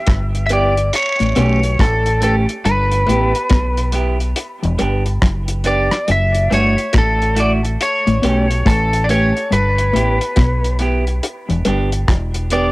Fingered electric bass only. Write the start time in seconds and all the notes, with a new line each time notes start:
0.09 G1
1.21 A1
1.38 B1
1.80 A1
2.66 G1
3.08 A1
3.51 B1
4.65 E1
4.81 G1
5.23 F#1
6.10 F#1
6.52 G1
6.95 A1
8.08 A1
8.24 B1
8.67 A1
9.52 G1
9.95 A1
10.38 B1
11.50 E1
11.66 G1
12.09 E1